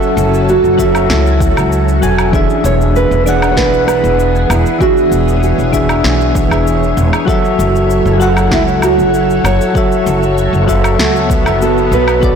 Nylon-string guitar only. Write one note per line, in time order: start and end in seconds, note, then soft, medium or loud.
0.00 0.13 A4 loud
0.49 0.79 F#4 loud
0.80 1.08 F#4 medium
1.11 1.68 E4 loud
2.66 2.74 C#5 loud
2.96 3.24 B4 loud
3.26 3.49 D5 loud
3.51 3.56 C#5 medium
3.57 3.85 B4 loud
3.87 4.45 B4 loud
4.49 4.81 E4 medium
4.81 5.37 F#4 medium
5.37 5.43 A4 medium
5.43 6.01 G#4 medium
7.30 8.13 A4 medium
8.14 8.21 G#4 medium
8.22 8.30 F#4 medium
8.53 8.61 E4 medium
8.83 9.41 F#4 medium
9.46 11.68 C#5 loud
11.62 11.93 A4 medium
11.93 12.36 B4 loud